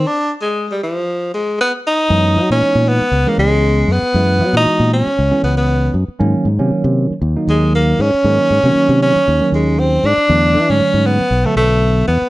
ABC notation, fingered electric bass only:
X:1
M:4/4
L:1/16
Q:"Swing 16ths" 1/4=117
K:Ablyd
V:1 name="Fingered electric bass" clef=bass
z16 | [K:F#mix] F,,2 F, A,, z A,,2 z C,, z C,,4 F,, z | F,,2 F, A,, z A,,2 z C,, z C,,4 F,, z | G,, z G,, ^B,, z B,,2 z D,, z D,,4 G,, z |
G,, z G,, ^B,, z B,,2 z D,, z D,,4 G,, z | E,,2 E, G,, z G,,2 z B,,, z B,,,4 E,, z |]